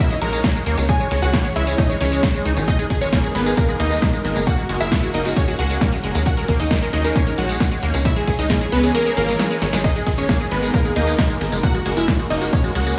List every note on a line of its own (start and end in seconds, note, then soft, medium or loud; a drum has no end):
0.00 0.85 A#3 medium
0.00 0.85 C#4 medium
0.00 0.87 D#4 medium
0.00 0.85 F#4 medium
0.00 2.64 C#5 loud
0.10 0.15 G#3 medium
0.10 0.18 D#5 medium
0.10 closed hi-hat soft
0.10 tambourine soft
0.21 0.40 A#1 medium
0.21 0.29 G#3 medium
0.21 0.80 A#4 medium
0.21 0.80 A#5 loud
0.21 open hi-hat loud
0.33 0.40 G#3 medium
0.33 closed hi-hat soft
0.33 tambourine medium
0.44 kick loud
0.44 snare loud
0.44 closed hi-hat medium
0.55 0.63 G#3 medium
0.55 closed hi-hat soft
0.55 tambourine soft
0.66 0.76 D#2 medium
0.66 0.77 A#3 medium
0.66 open hi-hat loud
0.77 0.96 C#2 loud
0.77 0.82 G#3 medium
0.77 closed hi-hat soft
0.77 tambourine medium
0.89 2.66 E3 medium
0.89 6.22 G#3 medium
0.89 0.96 G#3 medium
0.89 2.66 C#4 medium
0.89 2.66 G#4 medium
0.89 0.96 G#4 medium
0.89 0.96 G#5 loud
0.89 kick loud
0.89 closed hi-hat medium
0.89 tambourine medium
1.00 1.08 G#3 medium
1.00 1.07 C#5 medium
1.00 closed hi-hat soft
1.00 tambourine soft
1.11 1.21 C#2 loud
1.11 1.16 G#3 medium
1.11 1.18 C#5 medium
1.11 open hi-hat loud
1.22 1.41 C#2 medium
1.22 1.30 G#3 medium
1.22 1.30 F#4 medium
1.22 1.29 F#5 loud
1.22 1.30 F#5 loud
1.22 tambourine medium
1.33 1.44 A#3 medium
1.33 1.41 C#5 medium
1.33 kick loud
1.33 snare loud
1.33 closed hi-hat medium
1.33 tambourine medium
1.45 1.49 G#3 medium
1.45 1.52 C#5 medium
1.45 closed hi-hat soft
1.45 tambourine soft
1.56 1.75 C#2 medium
1.56 1.64 G#3 medium
1.56 1.63 E4 medium
1.56 1.63 E5 medium
1.56 open hi-hat loud
1.67 1.75 G#3 medium
1.67 1.74 C#5 medium
1.67 closed hi-hat soft
1.67 tambourine medium
1.78 1.83 G#3 medium
1.78 1.85 D#4 medium
1.78 1.85 D#5 medium
1.78 1.86 D#5 medium
1.78 kick loud
1.78 closed hi-hat medium
1.78 tambourine medium
1.89 1.97 G#3 medium
1.89 1.97 C#5 medium
1.89 closed hi-hat soft
1.89 tambourine soft
2.01 2.20 C#2 medium
2.01 2.05 D#3 medium
2.01 2.59 C#4 medium
2.01 2.59 C#5 loud
2.01 open hi-hat loud
2.12 2.22 G#3 medium
2.12 tambourine medium
2.23 2.28 D#3 medium
2.23 kick loud
2.23 snare loud
2.23 closed hi-hat medium
2.34 2.45 G#3 medium
2.34 closed hi-hat soft
2.34 tambourine soft
2.45 2.55 C#2 medium
2.45 2.53 D#4 medium
2.45 open hi-hat loud
2.57 2.76 G#1 medium
2.57 2.64 D#3 loud
2.57 tambourine medium
2.68 2.75 G#3 medium
2.68 8.01 A#3 medium
2.68 4.45 B3 medium
2.68 2.75 D#4 medium
2.68 4.45 D#4 medium
2.68 6.23 A#4 loud
2.68 2.75 D#5 loud
2.68 kick loud
2.68 closed hi-hat medium
2.68 tambourine medium
2.79 2.87 G#3 medium
2.79 2.86 G#4 medium
2.79 closed hi-hat soft
2.79 tambourine soft
2.90 3.00 G#1 medium
2.90 2.95 G#3 medium
2.90 2.97 G#4 medium
2.90 2.98 G#4 medium
2.90 kick medium
2.90 open hi-hat loud
3.01 3.20 G#1 medium
3.01 3.09 G#3 medium
3.01 3.09 C#4 medium
3.01 3.09 C#5 loud
3.01 tambourine medium
3.13 3.23 A#3 medium
3.13 3.20 G#4 medium
3.13 kick loud
3.13 snare loud
3.13 closed hi-hat medium
3.13 tambourine medium
3.24 3.28 G#3 medium
3.24 3.31 G#4 medium
3.24 closed hi-hat soft
3.24 tambourine soft
3.35 3.54 G#1 medium
3.35 3.43 G#3 medium
3.35 3.42 B3 medium
3.35 3.42 B4 medium
3.35 open hi-hat loud
3.46 3.54 G#3 medium
3.46 3.53 G#4 medium
3.46 closed hi-hat soft
3.46 tambourine medium
3.57 3.62 G#3 medium
3.57 3.65 A#3 medium
3.57 3.65 A#4 medium
3.57 kick loud
3.57 closed hi-hat medium
3.57 tambourine medium
3.69 3.76 G#3 medium
3.69 3.76 G#4 medium
3.69 closed hi-hat soft
3.69 tambourine soft
3.80 3.99 D#2 medium
3.80 3.90 A#3 medium
3.80 4.38 D#4 medium
3.80 4.38 D#5 loud
3.80 open hi-hat loud
3.91 3.96 G#3 medium
3.91 closed hi-hat soft
3.91 tambourine medium
4.02 4.10 G#3 medium
4.02 kick loud
4.02 snare loud
4.02 closed hi-hat medium
4.02 tambourine medium
4.13 4.21 G#3 medium
4.13 closed hi-hat soft
4.13 tambourine soft
4.25 4.34 G#1 medium
4.25 4.29 G#3 medium
4.25 open hi-hat loud
4.36 4.55 F#1 loud
4.36 4.43 G#3 medium
4.36 tambourine medium
4.47 4.58 A#3 medium
4.47 8.01 C#4 medium
4.47 8.02 F#4 medium
4.47 4.54 F#4 medium
4.47 4.54 F#5 loud
4.47 kick loud
4.47 closed hi-hat medium
4.47 tambourine medium
4.58 4.63 G#3 medium
4.58 4.65 F#4 medium
4.58 closed hi-hat soft
4.58 tambourine soft
4.69 4.79 F#1 loud
4.69 4.77 G#3 medium
4.69 4.77 F#4 medium
4.69 open hi-hat loud
4.80 4.99 F#1 medium
4.80 4.88 G#3 medium
4.80 4.88 E4 medium
4.80 4.88 E5 medium
4.80 4.88 E5 loud
4.80 closed hi-hat soft
4.80 tambourine medium
4.92 4.96 G#3 medium
4.92 4.99 F#4 medium
4.92 kick loud
4.92 snare loud
4.92 closed hi-hat medium
4.92 tambourine medium
5.03 5.11 G#3 medium
5.03 5.10 F#4 medium
5.03 closed hi-hat soft
5.03 tambourine soft
5.14 5.33 F#1 medium
5.14 5.25 A#3 medium
5.14 5.21 D#4 medium
5.14 5.21 D#5 medium
5.14 open hi-hat loud
5.25 5.30 G#3 medium
5.25 5.33 F#4 medium
5.25 closed hi-hat soft
5.25 tambourine medium
5.36 5.44 G#3 medium
5.36 5.44 C#4 medium
5.36 5.44 C#5 medium
5.36 kick loud
5.36 closed hi-hat loud
5.36 tambourine medium
5.48 5.55 G#3 medium
5.48 5.55 F#4 medium
5.48 closed hi-hat soft
5.48 tambourine soft
5.59 5.78 C#2 medium
5.59 5.63 G#3 medium
5.59 6.17 F#4 medium
5.59 6.17 F#5 loud
5.59 open hi-hat loud
5.70 5.78 G#3 medium
5.70 closed hi-hat soft
5.70 tambourine medium
5.81 5.92 A#3 medium
5.81 kick loud
5.81 snare loud
5.81 closed hi-hat medium
5.81 tambourine medium
5.92 5.97 G#3 medium
5.92 closed hi-hat soft
5.92 tambourine soft
6.04 6.13 F#1 medium
6.04 6.11 G#3 medium
6.04 open hi-hat loud
6.15 6.34 D#2 medium
6.15 6.22 G#3 medium
6.15 closed hi-hat soft
6.15 tambourine medium
6.26 6.31 G#3 medium
6.26 8.03 D#4 medium
6.26 6.33 F#4 medium
6.26 9.81 C#5 medium
6.26 6.33 F#5 loud
6.26 kick loud
6.26 closed hi-hat medium
6.26 tambourine medium
6.37 6.45 G#3 medium
6.37 6.45 A#4 medium
6.37 closed hi-hat soft
6.37 tambourine soft
6.48 6.58 D#2 loud
6.48 6.59 A#3 medium
6.48 6.56 A#4 medium
6.48 kick medium
6.48 open hi-hat loud
6.60 6.79 D#2 medium
6.60 6.64 G#3 medium
6.60 6.67 D#4 medium
6.60 6.67 D#5 medium
6.60 6.67 D#5 loud
6.60 closed hi-hat soft
6.60 tambourine medium
6.71 6.78 G#3 medium
6.71 6.78 A#4 medium
6.71 kick loud
6.71 snare loud
6.71 closed hi-hat loud
6.71 tambourine medium
6.82 6.90 G#3 medium
6.82 6.89 A#4 medium
6.82 closed hi-hat soft
6.82 tambourine soft
6.93 7.12 D#2 medium
6.93 6.98 G#3 medium
6.93 7.01 D#4 medium
6.93 7.01 D#5 medium
6.93 open hi-hat loud
7.04 7.12 G#3 medium
7.04 7.12 A#4 medium
7.04 closed hi-hat soft
7.04 tambourine medium
7.15 7.26 A#3 medium
7.15 7.23 C#4 medium
7.15 7.23 C#5 medium
7.15 kick loud
7.15 closed hi-hat loud
7.15 tambourine medium
7.27 7.31 G#3 medium
7.27 7.34 A#4 medium
7.27 closed hi-hat soft
7.27 tambourine soft
7.38 7.57 A#1 medium
7.38 7.46 G#3 medium
7.38 7.96 F#4 medium
7.38 7.96 F#5 loud
7.38 open hi-hat loud
7.49 7.57 G#3 medium
7.49 closed hi-hat soft
7.49 tambourine medium
7.60 7.65 G#3 medium
7.60 kick loud
7.60 snare loud
7.60 closed hi-hat medium
7.60 tambourine medium
7.71 7.79 G#3 medium
7.71 closed hi-hat soft
7.71 tambourine soft
7.83 7.92 D#2 medium
7.83 7.93 A#3 medium
7.83 open hi-hat loud
7.94 8.13 C#2 loud
7.94 7.98 G#3 medium
7.94 closed hi-hat soft
7.94 tambourine medium
8.05 9.82 E3 medium
8.05 8.13 G#3 medium
8.05 12.99 G#3 medium
8.05 9.82 C#4 medium
8.05 8.13 E4 medium
8.05 9.82 G#4 medium
8.05 8.12 E5 loud
8.05 8.13 E5 loud
8.05 kick loud
8.05 closed hi-hat loud
8.05 tambourine medium
8.16 8.24 G#3 medium
8.16 8.24 G#4 medium
8.16 closed hi-hat soft
8.16 tambourine soft
8.27 8.37 C#2 loud
8.27 8.32 G#3 medium
8.27 8.35 G#4 medium
8.27 kick medium
8.27 open hi-hat loud
8.39 8.58 C#2 medium
8.39 8.46 G#3 medium
8.39 8.46 D#4 medium
8.39 8.46 D#5 medium
8.39 tambourine medium
8.50 8.61 A#3 medium
8.50 8.57 G#4 medium
8.50 kick loud
8.50 snare loud
8.50 closed hi-hat loud
8.50 tambourine medium
8.61 8.66 G#3 medium
8.61 8.68 G#4 medium
8.61 closed hi-hat soft
8.61 tambourine soft
8.72 8.91 C#2 medium
8.72 8.80 G#3 medium
8.72 8.80 B3 medium
8.72 8.80 B4 medium
8.72 open hi-hat loud
8.83 8.91 G#3 medium
8.83 8.91 G#4 medium
8.83 closed hi-hat soft
8.83 tambourine medium
8.95 8.99 G#3 medium
8.95 9.02 A#3 medium
8.95 9.02 A#4 medium
8.95 closed hi-hat loud
8.95 tambourine medium
9.06 9.13 G#3 medium
9.06 9.13 G#4 medium
9.06 open hi-hat medium
9.06 tambourine soft
9.17 9.36 G#1 medium
9.17 9.75 A#3 medium
9.17 9.28 A#3 medium
9.17 9.75 A#4 loud
9.17 open hi-hat loud
9.28 9.33 G#3 medium
9.28 snare soft
9.28 closed hi-hat soft
9.28 tambourine medium
9.39 9.47 G#3 medium
9.39 snare loud
9.39 closed hi-hat medium
9.39 tambourine medium
9.51 9.58 G#3 medium
9.51 closed hi-hat soft
9.51 tambourine soft
9.62 9.71 G#1 medium
9.62 9.66 G#3 medium
9.62 snare medium
9.62 open hi-hat loud
9.73 9.92 G#1 medium
9.73 9.81 G#3 medium
9.73 snare medium
9.73 tambourine medium
9.84 9.92 G#3 medium
9.84 12.99 A#3 medium
9.84 11.62 B3 medium
9.84 11.62 D#4 medium
9.84 9.92 D#4 medium
9.84 12.99 A#4 loud
9.84 9.91 D#5 loud
9.84 9.92 D#5 loud
9.84 kick loud
9.84 closed hi-hat loud
9.84 crash medium
9.84 tambourine soft
9.95 10.03 G#3 medium
9.95 10.03 G#4 medium
9.95 closed hi-hat soft
9.95 tambourine soft
10.06 10.16 G#1 loud
10.06 10.11 G#3 medium
10.06 10.14 G#4 medium
10.06 kick medium
10.06 open hi-hat loud
10.06 ride medium
10.18 10.37 G#1 medium
10.18 10.25 G#3 medium
10.18 10.25 C#4 medium
10.18 10.25 C#5 medium
10.18 10.25 C#5 loud
10.18 closed hi-hat soft
10.18 tambourine medium
10.29 10.40 A#3 medium
10.29 10.36 G#4 medium
10.29 kick loud
10.29 snare loud
10.29 closed hi-hat loud
10.29 tambourine medium
10.40 10.45 G#3 medium
10.40 10.47 G#4 medium
10.40 10.48 G#4 medium
10.40 closed hi-hat soft
10.40 tambourine soft
10.51 10.70 G#1 medium
10.51 10.59 G#3 medium
10.51 10.59 B3 medium
10.51 10.59 B4 medium
10.51 open hi-hat loud
10.51 ride medium
10.63 10.70 G#3 medium
10.63 10.70 G#4 medium
10.63 closed hi-hat soft
10.63 tambourine medium
10.74 10.78 G#3 medium
10.74 10.81 A#3 medium
10.74 10.81 A#4 medium
10.74 kick loud
10.74 closed hi-hat loud
10.74 tambourine medium
10.85 10.93 G#3 medium
10.85 10.92 G#4 medium
10.85 closed hi-hat soft
10.85 tambourine soft
10.96 11.15 D#2 medium
10.96 11.07 A#3 medium
10.96 11.54 D#4 medium
10.96 11.54 D#5 medium
10.96 11.54 D#5 loud
10.96 open hi-hat loud
10.96 ride medium
11.07 11.12 G#3 medium
11.07 closed hi-hat soft
11.07 tambourine medium
11.19 11.26 G#3 medium
11.19 kick loud
11.19 snare loud
11.19 closed hi-hat loud
11.19 tambourine soft
11.30 11.37 G#3 medium
11.30 closed hi-hat soft
11.30 tambourine soft
11.41 11.50 G#1 medium
11.41 11.46 G#3 medium
11.41 open hi-hat loud
11.41 ride medium
11.52 11.71 F#1 loud
11.52 11.60 G#3 medium
11.52 tambourine medium
11.63 11.74 A#3 medium
11.63 12.99 C#4 medium
11.63 12.99 F#4 medium
11.63 11.71 F#4 medium
11.63 11.71 F#5 loud
11.63 kick loud
11.63 closed hi-hat loud
11.63 tambourine medium
11.74 11.79 G#3 medium
11.74 11.82 F#4 medium
11.74 closed hi-hat soft
11.74 tambourine soft
11.86 11.95 F#1 loud
11.86 11.93 G#3 medium
11.86 11.93 F#4 medium
11.86 open hi-hat loud
11.86 ride medium
11.97 12.16 F#1 medium
11.97 12.04 G#3 medium
11.97 12.04 E4 medium
11.97 12.04 E5 loud
11.97 12.04 E5 medium
11.97 closed hi-hat soft
11.97 tambourine medium
12.08 12.13 G#3 medium
12.08 12.15 F#4 medium
12.08 kick loud
12.08 snare loud
12.08 closed hi-hat medium
12.08 tambourine medium
12.19 12.27 G#3 medium
12.19 12.26 F#4 medium
12.19 12.27 F#4 medium
12.19 closed hi-hat soft
12.19 tambourine soft
12.30 12.49 F#1 medium
12.30 12.41 A#3 medium
12.30 12.38 D#4 medium
12.30 12.38 D#5 medium
12.30 open hi-hat loud
12.30 ride medium
12.42 12.46 G#3 medium
12.42 12.49 F#4 medium
12.42 closed hi-hat soft
12.42 tambourine medium
12.53 12.60 G#3 medium
12.53 12.60 C#4 medium
12.53 12.60 C#5 medium
12.53 kick loud
12.53 closed hi-hat loud
12.53 tambourine medium
12.64 12.72 G#3 medium
12.64 12.71 F#4 medium
12.64 closed hi-hat soft
12.64 tambourine soft
12.75 12.94 C#2 medium
12.75 12.80 G#3 medium
12.75 12.99 F#4 medium
12.75 12.99 F#5 loud
12.75 open hi-hat loud
12.75 ride medium
12.86 12.94 G#3 medium
12.86 closed hi-hat soft
12.86 tambourine medium